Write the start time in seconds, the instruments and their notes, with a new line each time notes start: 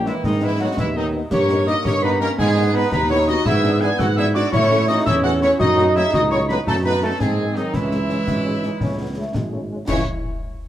Already playing: tuba A#1, trombone section A#3
0.05 french horn section D#3 C#4 D#4, euphonium E3, woodwind section G#3, trumpet section E4, piccolo E5, snare
0.23 tuba G#2, euphonium D#3, woodwind section G#3, trombone section G#3, trumpet section D#4, piccolo D#5, concert bass drum, snare
0.41 french horn section D#3 B3 D#4, euphonium E3, woodwind section G#3, trumpet section E4, piccolo E5
0.59 french horn section D#3 B3 D#4, euphonium F#3, woodwind section A3, trumpet section F#4, piccolo F#5
0.77 tuba D#2, euphonium E3, woodwind section G#3, trumpet section E4, piccolo E5, concert bass drum, snare
0.95 french horn section D#3 B3 D#4, euphonium D#3, woodwind section F#3, trumpet section D#4, piccolo D#5
1.13 french horn section D#3 B3 D#4
1.30 tuba G2, trombone section A#3, euphonium C#4, woodwind section G4, trumpet section C#5, piccolo C#6, concert bass drum, snare, crash
1.48 french horn section D#3 A#3 D#4, snare
1.66 french horn section D#3 A#3 D#4, euphonium D#4, woodwind section G4, trumpet section D#5, piccolo D#6, snare
1.84 tuba G2, euphonium C#4, woodwind section G4, trumpet section C#5, piccolo C#6, concert bass drum, snare
2.02 french horn section D#3 A#3 D#4, euphonium B3, woodwind section D#4, trumpet section B4, piccolo B5
2.20 french horn section D#3 A#3 D#4, euphonium A#3, woodwind section C#4, trumpet section A#4, piccolo A#5, snare
2.38 tuba G#2, euphonium G#3, woodwind section B3, trombone section B3, trumpet section G#4, piccolo G#5, concert bass drum, snare
2.55 french horn section D#3 B3 D#4
2.74 french horn section D#3 B3 D#4, euphonium B3, woodwind section D#4, trumpet section B4, piccolo B5
2.91 tuba D#2, euphonium B3, trombone section D#4, woodwind section D#4, trumpet section B4, piccolo B5, concert bass drum, snare
3.09 french horn section D#3 B3 D#4, euphonium C#4, woodwind section E4, trumpet section C#5, piccolo C#6
3.27 french horn section D#3 B3 D#4, euphonium D#4, woodwind section F#4, trumpet section D#5, piccolo D#6, snare
3.45 tuba G#2, trombone section B3, euphonium E4, woodwind section G#4, trumpet section E5, piccolo E6, concert bass drum, snare, crash
3.63 french horn section E3 B3 D4, snare
3.80 french horn section E3 B3 D4, euphonium G#4, woodwind section B4, trumpet section G#5, piccolo G#6, snare
3.98 tuba G#2, euphonium F#4, woodwind section A4, trumpet section F#5, piccolo F#6, concert bass drum, snare
4.16 french horn section E3 B3 D4, euphonium E4, woodwind section G#4, trumpet section E5, piccolo E6
4.34 french horn section E3 B3 D4, euphonium D4, woodwind section F#4, trumpet section D5, piccolo D6, snare
4.52 tuba A2, trombone section A3, euphonium C#4, woodwind section E4, trumpet section C#5, piccolo C#6, concert bass drum, snare
4.70 french horn section E3 A3 C#4
4.88 french horn section E3 A3 C#4, euphonium D#4, woodwind section F#4, trumpet section D#5, piccolo D#6
5.05 tuba E2, trombone section C#4, euphonium E4, woodwind section A4, trumpet section E5, piccolo E6, concert bass drum, snare
5.23 french horn section E3 A3 C#4, euphonium F#4, woodwind section A4, trumpet section F#5, piccolo F#6
5.41 french horn section E3 A3 C#4, euphonium C#4, woodwind section E4, trumpet section C#5, piccolo C#6, snare
5.59 tuba F#2, trombone section D#4, euphonium D#4, woodwind section F#4, trumpet section D#5, piccolo D#6, concert bass drum, snare, crash
5.77 french horn section F#3 A3 C#4, snare
5.95 french horn section F#3 A3 C#4, euphonium E4, woodwind section G#4, trumpet section E5, piccolo E6, snare
6.13 tuba C#2, euphonium D#4, woodwind section F#4, trumpet section D#5, piccolo D#6, concert bass drum, snare
6.30 french horn section F#3 A3 C#4, euphonium C#4, woodwind section E4, trumpet section C#5, piccolo C#6
6.48 french horn section F#3 A3 C#4, euphonium B3, woodwind section D#4, trumpet section B4, piccolo B5, snare
6.66 tuba F#2, euphonium A3, trombone section C#4, woodwind section D#4, trumpet section A4, piccolo A5, concert bass drum, snare
6.84 french horn section D#3 A3 D#4, euphonium B3, woodwind section D#4, trumpet section B4, piccolo B5
7.02 french horn section D#3 A3 D#4, euphonium A3, woodwind section C#4, trumpet section A4, piccolo A5
7.19 tuba G#2, euphonium G#3, trombone section C4, woodwind section C4, trumpet section G#4, piccolo G#5, concert bass drum, snare
7.38 french horn section D#3 G#3 C4
7.55 french horn section D#3 G#3 C4, euphonium D#3, woodwind section F#3, trumpet section D#4, piccolo D#5, snare
7.73 tuba C#2, euphonium E3, woodwind section G#3, trombone section C#4, trumpet section E4, piccolo E5, concert bass drum, snare, crash
7.91 french horn section C#3 G#3 C#4, snare
8.09 french horn section C#3 G#3 C#4, snare
8.27 tuba G#1, trombone section C#4, concert bass drum, snare
8.46 french horn section C#3 G#3 C#4
8.62 french horn section C#3 G#3 C#4, trombone section D#4, snare
8.81 tuba C#2, trombone section C#4, concert bass drum, snare
8.98 french horn section C#3 G#3 C#4, trombone section B3
9.16 french horn section C#3 G#3 C#4, trombone section A3
9.34 tuba G#1, trombone section G#3, concert bass drum, snare
9.52 french horn section C#3 G#3 C#4, trombone section A3
9.70 french horn section C#3 G#3 C#4, trombone section G#3
9.87 tuba C#2, euphonium C#3, french horn section E3 G#3 C#4, trombone section G#3 E4, woodwind section E4, trumpet section C#5, piccolo C#6, concert bass drum, snare, crash